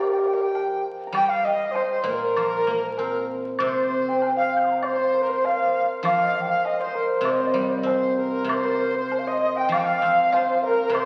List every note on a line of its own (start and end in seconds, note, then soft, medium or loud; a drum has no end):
0.00 0.52 F3 medium
0.00 0.84 G4 medium
0.00 2.77 G4 medium
0.00 2.07 A#4 medium
0.00 1.75 C5 medium
0.00 1.25 D#5 medium
0.00 0.93 F5 medium
0.05 0.14 A#4 medium
0.12 0.21 G5 medium
0.20 0.28 A#4 medium
0.27 0.36 G5 medium
0.34 0.43 A#4 medium
0.41 0.84 G5 medium
0.55 low woodblock soft
1.07 2.94 A#5 medium
1.12 2.97 G3 medium
1.12 3.20 G5 medium
1.12 1.31 G5 medium
1.12 1.30 G5 loud
1.12 high woodblock medium
1.29 1.42 F5 loud
1.29 1.46 F5 medium
1.42 1.73 D#5 medium
1.42 1.77 D#5 medium
1.42 1.69 D#5 medium
1.69 1.86 C5 medium
1.69 4.08 D#5 medium
1.74 1.90 C5 medium
1.74 3.60 C5 medium
1.74 low woodblock soft
1.87 2.05 C5 medium
1.91 2.07 C5 medium
2.03 3.59 A#2 medium
2.03 3.28 A#4 medium
2.03 2.96 A#4 medium
2.03 4.90 A#4 medium
2.37 3.61 F3 soft
2.37 high woodblock medium
2.67 3.91 A#3 soft
2.97 4.22 C4 soft
2.97 3.26 A#4 medium
2.97 low woodblock soft
3.59 5.44 C3 medium
3.59 4.03 C5 medium
3.59 4.83 C5 medium
3.59 4.34 C5 medium
3.59 high woodblock medium
4.08 4.38 G5 medium
4.08 6.15 G5 medium
4.22 low woodblock soft
4.36 5.44 F5 medium
4.36 4.86 F5 medium
4.36 4.56 F5 medium
4.57 4.63 F6 soft
4.57 4.59 G6 soft
4.63 4.71 C6 soft
4.63 4.65 D#6 soft
4.71 4.75 A#5 soft
4.76 4.81 F5 medium
4.76 4.78 G5 soft
4.81 4.98 C5 medium
4.81 4.99 C5 medium
4.81 5.24 C5 medium
4.81 4.86 D#5 medium
4.81 high woodblock medium
4.98 5.30 C5 medium
4.98 5.17 C5 medium
5.14 6.95 A#4 medium
5.14 5.23 C5 medium
5.21 5.31 A#4 medium
5.21 5.33 A#4 medium
5.29 5.47 C5 medium
5.29 6.78 C5 medium
5.29 5.47 C5 medium
5.44 6.03 F5 medium
5.44 5.90 F5 loud
5.44 5.91 F5 medium
5.44 low woodblock soft
6.03 7.84 F3 medium
6.03 6.32 F5 medium
6.03 6.19 F5 loud
6.03 6.46 F5 medium
6.03 high woodblock medium
6.21 6.37 D#5 medium
6.32 6.46 F5 medium
6.32 6.43 F5 medium
6.41 6.50 G5 medium
6.47 8.69 F5 medium
6.47 6.66 F5 medium
6.64 6.78 D#5 medium
6.64 6.83 D#5 medium
6.64 9.04 D#5 medium
6.64 low woodblock soft
6.79 6.96 C5 medium
6.79 7.24 C5 medium
6.79 7.06 C5 medium
6.94 7.25 A#4 medium
6.94 8.17 A#4 medium
7.21 8.43 C3 medium
7.21 7.90 C5 medium
7.21 8.10 C5 medium
7.25 7.34 C5 medium
7.25 high woodblock medium
7.32 7.42 D#5 medium
7.40 7.48 C5 medium
7.47 7.58 D#5 medium
7.54 8.79 G3 soft
7.54 7.66 C5 medium
7.64 7.73 D#5 medium
7.71 7.80 C5 medium
7.79 7.90 D#5 medium
7.83 9.09 C4 soft
7.83 low woodblock soft
7.89 8.17 C5 medium
8.10 8.48 C5 medium
8.17 10.67 A#4 medium
8.17 8.50 A#4 medium
8.44 9.70 C3 medium
8.44 8.54 C5 medium
8.49 9.29 C5 medium
8.49 8.67 C5 loud
8.49 high woodblock medium
8.55 8.62 C5 medium
8.62 8.97 A#4 medium
8.62 8.70 C5 medium
8.70 8.77 C5 medium
8.77 8.86 C5 medium
8.87 8.94 C5 soft
8.94 9.00 C5 medium
8.94 9.20 C5 medium
9.01 9.09 C5 medium
9.09 10.35 C5 medium
9.09 low woodblock soft
9.19 9.29 F5 medium
9.27 10.26 D#5 medium
9.27 9.59 D#5 medium
9.27 9.58 D#5 medium
9.56 9.71 G5 medium
9.56 11.05 G5 medium
9.56 9.70 G5 loud
9.69 11.05 F3 medium
9.69 10.66 F5 loud
9.69 9.80 F5 medium
9.69 high woodblock medium
9.74 11.05 F5 medium
9.78 9.87 G5 medium
9.85 10.35 F5 medium
10.02 11.05 C4 soft
10.27 11.05 D#5 medium
10.32 11.05 F4 soft
10.32 10.61 C5 medium
10.32 10.93 C5 medium
10.32 low woodblock soft
10.61 10.93 A#4 medium
10.61 10.95 A#4 loud
10.67 11.05 A#4 medium
10.90 11.05 C3 medium
10.90 11.05 C5 medium
10.90 11.05 C5 loud
10.94 11.05 C5 medium
10.94 high woodblock medium